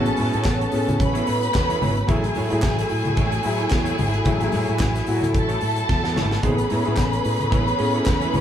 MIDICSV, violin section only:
0, 0, Header, 1, 2, 480
1, 0, Start_track
1, 0, Key_signature, 3, "major"
1, 0, Tempo, 542986
1, 1846, Time_signature, 4, 2, 24, 8
1, 7430, End_track
2, 0, Start_track
2, 0, Title_t, "Violin section"
2, 0, Program_c, 0, 48
2, 0, Note_on_c, 0, 69, 69
2, 0, Note_on_c, 0, 81, 81
2, 857, Note_off_c, 0, 69, 0
2, 857, Note_off_c, 0, 81, 0
2, 900, Note_on_c, 0, 83, 84
2, 905, Note_on_c, 0, 71, 76
2, 1834, Note_off_c, 0, 83, 0
2, 1837, Note_off_c, 0, 71, 0
2, 1849, Note_on_c, 0, 68, 73
2, 1853, Note_on_c, 0, 80, 77
2, 4693, Note_off_c, 0, 68, 0
2, 4694, Note_off_c, 0, 80, 0
2, 4730, Note_on_c, 0, 69, 77
2, 4736, Note_on_c, 0, 81, 84
2, 5668, Note_off_c, 0, 69, 0
2, 5671, Note_off_c, 0, 81, 0
2, 5695, Note_on_c, 0, 83, 71
2, 5698, Note_on_c, 0, 71, 74
2, 7430, Note_off_c, 0, 71, 0
2, 7430, Note_off_c, 0, 83, 0
2, 7430, End_track
0, 0, End_of_file